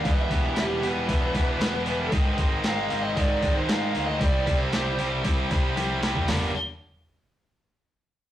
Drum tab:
HH |o-o-o-o-o-o-o-o-|o-o-o-o-o-o-o-o-|o-o-o-o-o-o-o-o-|o---------------|
SD |----o-------o---|----o-------o---|----o---------o-|o---------------|
T1 |----------------|----------------|------------o---|----------------|
FT |----------------|----------------|---------------o|o---------------|
BD |o-o-----o-o-----|o-o-----o-o-----|o-o-----o-o-----|----------------|